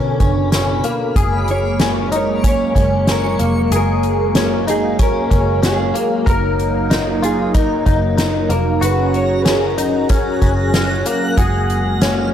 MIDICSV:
0, 0, Header, 1, 7, 480
1, 0, Start_track
1, 0, Key_signature, 6, "major"
1, 0, Tempo, 638298
1, 873, Time_signature, 4, 2, 24, 8
1, 9277, End_track
2, 0, Start_track
2, 0, Title_t, "Synth texture"
2, 0, Program_c, 0, 99
2, 0, Note_on_c, 0, 83, 75
2, 0, Note_on_c, 0, 86, 56
2, 0, Note_on_c, 0, 89, 60
2, 851, Note_off_c, 0, 83, 0
2, 989, Note_off_c, 0, 86, 0
2, 1126, Note_off_c, 0, 89, 0
2, 1351, Note_on_c, 0, 85, 76
2, 2527, Note_off_c, 0, 85, 0
2, 6876, Note_on_c, 0, 90, 74
2, 7038, Note_on_c, 0, 94, 57
2, 8049, Note_off_c, 0, 90, 0
2, 8190, Note_off_c, 0, 94, 0
2, 9277, End_track
3, 0, Start_track
3, 0, Title_t, "Clean electric guitar"
3, 0, Program_c, 1, 27
3, 0, Note_on_c, 1, 70, 73
3, 131, Note_off_c, 1, 70, 0
3, 1137, Note_on_c, 1, 73, 96
3, 1616, Note_off_c, 1, 73, 0
3, 1625, Note_on_c, 1, 73, 84
3, 1856, Note_off_c, 1, 73, 0
3, 1863, Note_on_c, 1, 73, 97
3, 2336, Note_off_c, 1, 73, 0
3, 2339, Note_on_c, 1, 70, 78
3, 2817, Note_off_c, 1, 70, 0
3, 2826, Note_on_c, 1, 70, 84
3, 3528, Note_off_c, 1, 70, 0
3, 3531, Note_on_c, 1, 68, 78
3, 3769, Note_off_c, 1, 68, 0
3, 3777, Note_on_c, 1, 70, 79
3, 4250, Note_off_c, 1, 70, 0
3, 4253, Note_on_c, 1, 68, 78
3, 4579, Note_off_c, 1, 68, 0
3, 4733, Note_on_c, 1, 70, 94
3, 5444, Note_off_c, 1, 70, 0
3, 5447, Note_on_c, 1, 68, 79
3, 5679, Note_off_c, 1, 68, 0
3, 5682, Note_on_c, 1, 70, 77
3, 6393, Note_off_c, 1, 70, 0
3, 6402, Note_on_c, 1, 70, 72
3, 6645, Note_off_c, 1, 70, 0
3, 6652, Note_on_c, 1, 71, 88
3, 6886, Note_off_c, 1, 71, 0
3, 6889, Note_on_c, 1, 73, 86
3, 7074, Note_off_c, 1, 73, 0
3, 7085, Note_on_c, 1, 71, 52
3, 7126, Note_off_c, 1, 71, 0
3, 7130, Note_on_c, 1, 70, 65
3, 7811, Note_off_c, 1, 70, 0
3, 8567, Note_on_c, 1, 66, 87
3, 9274, Note_off_c, 1, 66, 0
3, 9277, End_track
4, 0, Start_track
4, 0, Title_t, "Clean electric guitar"
4, 0, Program_c, 2, 27
4, 0, Note_on_c, 2, 61, 76
4, 142, Note_off_c, 2, 61, 0
4, 151, Note_on_c, 2, 61, 71
4, 383, Note_off_c, 2, 61, 0
4, 392, Note_on_c, 2, 61, 73
4, 633, Note_off_c, 2, 61, 0
4, 633, Note_on_c, 2, 58, 71
4, 873, Note_off_c, 2, 58, 0
4, 873, Note_on_c, 2, 68, 74
4, 1353, Note_off_c, 2, 68, 0
4, 1354, Note_on_c, 2, 61, 65
4, 1589, Note_off_c, 2, 61, 0
4, 1592, Note_on_c, 2, 63, 71
4, 1830, Note_off_c, 2, 63, 0
4, 1833, Note_on_c, 2, 61, 75
4, 2060, Note_off_c, 2, 61, 0
4, 2069, Note_on_c, 2, 61, 66
4, 2306, Note_off_c, 2, 61, 0
4, 2315, Note_on_c, 2, 61, 75
4, 2551, Note_on_c, 2, 58, 72
4, 2554, Note_off_c, 2, 61, 0
4, 2792, Note_off_c, 2, 58, 0
4, 2798, Note_on_c, 2, 68, 72
4, 3275, Note_off_c, 2, 68, 0
4, 3276, Note_on_c, 2, 61, 69
4, 3512, Note_off_c, 2, 61, 0
4, 3515, Note_on_c, 2, 63, 68
4, 3751, Note_off_c, 2, 63, 0
4, 3754, Note_on_c, 2, 61, 79
4, 3981, Note_off_c, 2, 61, 0
4, 3990, Note_on_c, 2, 61, 73
4, 4221, Note_off_c, 2, 61, 0
4, 4230, Note_on_c, 2, 61, 75
4, 4467, Note_on_c, 2, 58, 75
4, 4472, Note_off_c, 2, 61, 0
4, 4709, Note_on_c, 2, 70, 81
4, 4710, Note_off_c, 2, 58, 0
4, 5191, Note_off_c, 2, 70, 0
4, 5191, Note_on_c, 2, 63, 71
4, 5430, Note_off_c, 2, 63, 0
4, 5433, Note_on_c, 2, 65, 70
4, 5670, Note_off_c, 2, 65, 0
4, 5673, Note_on_c, 2, 63, 76
4, 5902, Note_off_c, 2, 63, 0
4, 5911, Note_on_c, 2, 63, 73
4, 6139, Note_off_c, 2, 63, 0
4, 6148, Note_on_c, 2, 63, 75
4, 6388, Note_on_c, 2, 58, 72
4, 6390, Note_off_c, 2, 63, 0
4, 6627, Note_on_c, 2, 66, 84
4, 6631, Note_off_c, 2, 58, 0
4, 7108, Note_on_c, 2, 61, 69
4, 7110, Note_off_c, 2, 66, 0
4, 7349, Note_off_c, 2, 61, 0
4, 7352, Note_on_c, 2, 63, 70
4, 7591, Note_off_c, 2, 63, 0
4, 7594, Note_on_c, 2, 61, 79
4, 7824, Note_off_c, 2, 61, 0
4, 7833, Note_on_c, 2, 61, 73
4, 8070, Note_off_c, 2, 61, 0
4, 8079, Note_on_c, 2, 61, 75
4, 8316, Note_off_c, 2, 61, 0
4, 8317, Note_on_c, 2, 58, 72
4, 8555, Note_off_c, 2, 58, 0
4, 8555, Note_on_c, 2, 68, 74
4, 9034, Note_off_c, 2, 68, 0
4, 9037, Note_on_c, 2, 61, 73
4, 9275, Note_off_c, 2, 61, 0
4, 9277, End_track
5, 0, Start_track
5, 0, Title_t, "Analog synth pad"
5, 0, Program_c, 3, 89
5, 0, Note_on_c, 3, 47, 73
5, 0, Note_on_c, 3, 50, 81
5, 854, Note_off_c, 3, 47, 0
5, 856, Note_off_c, 3, 50, 0
5, 872, Note_on_c, 3, 58, 81
5, 874, Note_on_c, 3, 56, 73
5, 876, Note_on_c, 3, 54, 78
5, 4684, Note_off_c, 3, 56, 0
5, 4714, Note_on_c, 3, 63, 93
5, 6603, Note_off_c, 3, 58, 0
5, 6614, Note_off_c, 3, 63, 0
5, 6628, Note_on_c, 3, 61, 72
5, 6630, Note_on_c, 3, 68, 70
5, 6632, Note_on_c, 3, 82, 88
5, 6633, Note_on_c, 3, 66, 72
5, 8525, Note_off_c, 3, 54, 0
5, 8531, Note_off_c, 3, 61, 0
5, 8533, Note_off_c, 3, 68, 0
5, 8534, Note_off_c, 3, 66, 0
5, 8534, Note_off_c, 3, 82, 0
5, 8550, Note_on_c, 3, 56, 84
5, 8551, Note_on_c, 3, 58, 73
5, 8554, Note_on_c, 3, 54, 85
5, 9277, Note_off_c, 3, 54, 0
5, 9277, Note_off_c, 3, 56, 0
5, 9277, Note_off_c, 3, 58, 0
5, 9277, End_track
6, 0, Start_track
6, 0, Title_t, "Picked electric bass"
6, 0, Program_c, 4, 34
6, 0, Note_on_c, 4, 30, 90
6, 126, Note_off_c, 4, 30, 0
6, 153, Note_on_c, 4, 30, 91
6, 609, Note_off_c, 4, 30, 0
6, 873, Note_on_c, 4, 30, 97
6, 2043, Note_off_c, 4, 30, 0
6, 2074, Note_on_c, 4, 30, 90
6, 2530, Note_off_c, 4, 30, 0
6, 2557, Note_on_c, 4, 29, 69
6, 2783, Note_off_c, 4, 29, 0
6, 2794, Note_on_c, 4, 30, 87
6, 3963, Note_off_c, 4, 30, 0
6, 3996, Note_on_c, 4, 30, 91
6, 4451, Note_off_c, 4, 30, 0
6, 4715, Note_on_c, 4, 30, 94
6, 5884, Note_off_c, 4, 30, 0
6, 5915, Note_on_c, 4, 30, 93
6, 6370, Note_off_c, 4, 30, 0
6, 6387, Note_on_c, 4, 29, 79
6, 6618, Note_off_c, 4, 29, 0
6, 6628, Note_on_c, 4, 30, 85
6, 7801, Note_off_c, 4, 30, 0
6, 7836, Note_on_c, 4, 30, 93
6, 8291, Note_off_c, 4, 30, 0
6, 8556, Note_on_c, 4, 30, 94
6, 9277, Note_off_c, 4, 30, 0
6, 9277, End_track
7, 0, Start_track
7, 0, Title_t, "Drums"
7, 151, Note_on_c, 9, 42, 39
7, 152, Note_on_c, 9, 36, 66
7, 227, Note_off_c, 9, 36, 0
7, 227, Note_off_c, 9, 42, 0
7, 392, Note_on_c, 9, 38, 82
7, 393, Note_on_c, 9, 42, 67
7, 467, Note_off_c, 9, 38, 0
7, 468, Note_off_c, 9, 42, 0
7, 630, Note_on_c, 9, 42, 46
7, 705, Note_off_c, 9, 42, 0
7, 872, Note_on_c, 9, 36, 98
7, 873, Note_on_c, 9, 42, 62
7, 947, Note_off_c, 9, 36, 0
7, 948, Note_off_c, 9, 42, 0
7, 1111, Note_on_c, 9, 42, 32
7, 1186, Note_off_c, 9, 42, 0
7, 1350, Note_on_c, 9, 42, 73
7, 1351, Note_on_c, 9, 38, 109
7, 1425, Note_off_c, 9, 42, 0
7, 1426, Note_off_c, 9, 38, 0
7, 1595, Note_on_c, 9, 42, 54
7, 1670, Note_off_c, 9, 42, 0
7, 1835, Note_on_c, 9, 36, 86
7, 1835, Note_on_c, 9, 42, 67
7, 1910, Note_off_c, 9, 36, 0
7, 1910, Note_off_c, 9, 42, 0
7, 2074, Note_on_c, 9, 36, 68
7, 2076, Note_on_c, 9, 42, 41
7, 2149, Note_off_c, 9, 36, 0
7, 2151, Note_off_c, 9, 42, 0
7, 2311, Note_on_c, 9, 38, 93
7, 2312, Note_on_c, 9, 42, 65
7, 2386, Note_off_c, 9, 38, 0
7, 2387, Note_off_c, 9, 42, 0
7, 2552, Note_on_c, 9, 42, 46
7, 2627, Note_off_c, 9, 42, 0
7, 2795, Note_on_c, 9, 42, 64
7, 2870, Note_off_c, 9, 42, 0
7, 3032, Note_on_c, 9, 42, 32
7, 3107, Note_off_c, 9, 42, 0
7, 3271, Note_on_c, 9, 42, 77
7, 3272, Note_on_c, 9, 38, 116
7, 3346, Note_off_c, 9, 42, 0
7, 3347, Note_off_c, 9, 38, 0
7, 3519, Note_on_c, 9, 42, 52
7, 3594, Note_off_c, 9, 42, 0
7, 3753, Note_on_c, 9, 42, 74
7, 3756, Note_on_c, 9, 36, 93
7, 3828, Note_off_c, 9, 42, 0
7, 3831, Note_off_c, 9, 36, 0
7, 3995, Note_on_c, 9, 36, 66
7, 3996, Note_on_c, 9, 42, 42
7, 4070, Note_off_c, 9, 36, 0
7, 4071, Note_off_c, 9, 42, 0
7, 4235, Note_on_c, 9, 38, 91
7, 4236, Note_on_c, 9, 42, 67
7, 4310, Note_off_c, 9, 38, 0
7, 4311, Note_off_c, 9, 42, 0
7, 4477, Note_on_c, 9, 42, 46
7, 4553, Note_off_c, 9, 42, 0
7, 4715, Note_on_c, 9, 36, 110
7, 4716, Note_on_c, 9, 42, 70
7, 4790, Note_off_c, 9, 36, 0
7, 4791, Note_off_c, 9, 42, 0
7, 4959, Note_on_c, 9, 42, 33
7, 5034, Note_off_c, 9, 42, 0
7, 5197, Note_on_c, 9, 42, 80
7, 5198, Note_on_c, 9, 38, 111
7, 5272, Note_off_c, 9, 42, 0
7, 5273, Note_off_c, 9, 38, 0
7, 5441, Note_on_c, 9, 42, 47
7, 5516, Note_off_c, 9, 42, 0
7, 5673, Note_on_c, 9, 42, 73
7, 5676, Note_on_c, 9, 36, 88
7, 5748, Note_off_c, 9, 42, 0
7, 5751, Note_off_c, 9, 36, 0
7, 5914, Note_on_c, 9, 36, 76
7, 5914, Note_on_c, 9, 42, 44
7, 5989, Note_off_c, 9, 36, 0
7, 5989, Note_off_c, 9, 42, 0
7, 6152, Note_on_c, 9, 38, 90
7, 6153, Note_on_c, 9, 42, 69
7, 6227, Note_off_c, 9, 38, 0
7, 6228, Note_off_c, 9, 42, 0
7, 6392, Note_on_c, 9, 42, 50
7, 6467, Note_off_c, 9, 42, 0
7, 6635, Note_on_c, 9, 42, 67
7, 6710, Note_off_c, 9, 42, 0
7, 6874, Note_on_c, 9, 42, 30
7, 6950, Note_off_c, 9, 42, 0
7, 7111, Note_on_c, 9, 42, 72
7, 7112, Note_on_c, 9, 38, 120
7, 7186, Note_off_c, 9, 42, 0
7, 7187, Note_off_c, 9, 38, 0
7, 7355, Note_on_c, 9, 42, 53
7, 7430, Note_off_c, 9, 42, 0
7, 7590, Note_on_c, 9, 42, 73
7, 7595, Note_on_c, 9, 36, 87
7, 7665, Note_off_c, 9, 42, 0
7, 7670, Note_off_c, 9, 36, 0
7, 7834, Note_on_c, 9, 36, 67
7, 7834, Note_on_c, 9, 42, 40
7, 7909, Note_off_c, 9, 36, 0
7, 7910, Note_off_c, 9, 42, 0
7, 8074, Note_on_c, 9, 38, 88
7, 8075, Note_on_c, 9, 42, 73
7, 8150, Note_off_c, 9, 38, 0
7, 8150, Note_off_c, 9, 42, 0
7, 8315, Note_on_c, 9, 42, 52
7, 8390, Note_off_c, 9, 42, 0
7, 8554, Note_on_c, 9, 42, 67
7, 8555, Note_on_c, 9, 36, 108
7, 8629, Note_off_c, 9, 42, 0
7, 8630, Note_off_c, 9, 36, 0
7, 8797, Note_on_c, 9, 42, 35
7, 8872, Note_off_c, 9, 42, 0
7, 9035, Note_on_c, 9, 42, 81
7, 9036, Note_on_c, 9, 38, 107
7, 9111, Note_off_c, 9, 42, 0
7, 9112, Note_off_c, 9, 38, 0
7, 9277, End_track
0, 0, End_of_file